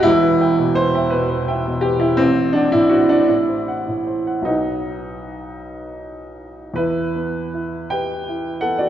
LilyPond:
\new Staff \with { instrumentName = "Upright piano" } { \time 6/8 \key e \minor \tempo 4. = 54 << { <e,, e,>16 b'16 <e'' g''>16 b,16 b'16 <e'' g''>16 b,16 b'16 <e'' g''>16 b,16 b'16 <e'' g''>16 | a,,16 c''16 fis''16 a,16 c''16 fis''16 a,16 c''16 fis''16 a,16 c''16 fis''16 | <b,, b' fis''>2. | e,8 b8 e'8 g'8 e'8 b8 | } \\ { e'4 c''8 b'4 g'16 e'16 | c'8 d'16 e'16 fis'16 d'16 e'4. | dis'4. r4. | <e' b'>4. <b' g''>4 <a' fis''>16 <fis' d''>16 | } >> }